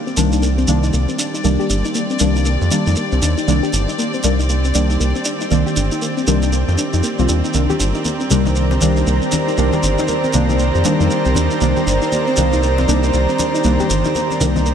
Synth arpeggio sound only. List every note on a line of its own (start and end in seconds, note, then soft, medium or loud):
0.07 0.12 C4 medium
0.17 0.25 D4 medium
0.32 0.38 D#4 medium
0.42 0.50 A#3 medium
0.58 0.63 C4 medium
0.68 0.76 D4 medium
0.83 0.91 D#4 medium
0.93 1.05 A#3 medium
1.09 1.14 C4 medium
1.19 1.31 D4 medium
1.34 1.39 D#4 medium
1.44 1.56 A#3 medium
1.59 1.65 G4 loud
1.70 1.78 D4 medium
1.85 1.90 D#4 medium
1.95 2.03 A#3 medium
2.10 2.16 C4 medium
2.20 2.28 D4 medium
2.36 2.41 D#4 medium
2.46 2.54 A#3 medium
2.61 2.66 C4 medium
2.71 2.79 D4 medium
2.87 2.94 D#4 medium
2.97 3.09 A#3 medium
3.12 3.17 C4 medium
3.22 3.34 D4 medium
3.38 3.43 D#4 medium
3.48 3.60 A#3 medium
3.63 3.68 G4 loud
3.73 3.81 D4 medium
3.88 3.94 D#4 medium
3.98 4.06 A#3 medium
4.14 4.19 C4 medium
4.24 4.32 D4 medium
4.39 4.44 D#4 medium
4.49 4.57 A#3 medium
4.65 4.70 C4 medium
4.75 4.83 D4 medium
4.90 4.98 D#4 medium
5.00 5.12 A#3 medium
5.15 5.21 C4 medium
5.25 5.38 D4 medium
5.41 5.46 D#4 medium
5.51 5.63 A#3 medium
5.66 5.72 G4 loud
5.76 5.84 D4 medium
5.92 5.97 D#4 medium
6.02 6.10 A#3 medium
6.17 6.22 C4 medium
6.27 6.35 D4 medium
6.43 6.48 D#4 medium
6.53 6.61 A#3 medium
6.68 6.73 C4 medium
6.78 6.86 D4 medium
6.93 7.01 D#4 medium
7.03 7.15 A#3 medium
7.19 7.24 C4 medium
7.29 7.41 D4 medium
7.44 7.49 D#4 medium
7.54 7.66 A#3 medium
7.70 7.75 G4 loud
7.80 7.88 D4 medium
7.95 8.00 D#4 medium
8.05 8.13 A#3 medium
8.21 8.26 C4 medium
8.30 8.39 D4 medium
8.46 8.51 D#4 medium
8.56 8.64 A#3 medium
8.71 8.77 C4 medium
8.81 8.89 D4 medium
8.97 9.05 D#4 medium
9.07 9.19 A#3 medium
9.22 9.27 C4 medium
9.32 9.44 D4 medium
9.48 9.53 D#4 medium
9.58 9.70 A#3 medium
9.73 9.78 G4 loud
9.83 9.91 D4 medium
9.98 10.04 D#4 medium
10.08 10.16 A#3 medium
10.24 10.29 C4 medium
10.34 10.42 D4 medium
10.49 10.55 D#4 medium
10.59 10.67 A#3 medium
10.75 10.80 C4 medium
10.85 10.93 D4 medium
11.00 11.08 D#4 medium
11.10 11.22 A#3 medium
11.26 11.31 C4 medium
11.36 11.48 D4 medium
11.51 11.56 D#4 medium
11.61 11.73 A#3 medium
11.76 11.82 G4 loud
11.86 11.95 D4 medium
12.02 12.07 D#4 medium
12.12 12.20 A#3 medium
12.27 12.33 C4 medium
12.37 12.45 D4 medium
12.53 12.58 D#4 medium
12.63 12.71 A#3 medium
12.78 12.83 C4 medium
12.88 12.96 D4 medium
13.04 13.11 D#4 medium
13.14 13.26 A#3 medium
13.29 13.34 C4 medium
13.39 13.51 D4 medium
13.54 13.60 D#4 medium
13.64 13.76 A#3 medium
13.80 13.85 G4 loud
13.90 13.98 D4 medium
14.05 14.11 D#4 medium
14.15 14.23 A#3 medium
14.31 14.36 C4 medium
14.41 14.49 D4 medium
14.56 14.61 D#4 medium
14.66 14.74 A#3 medium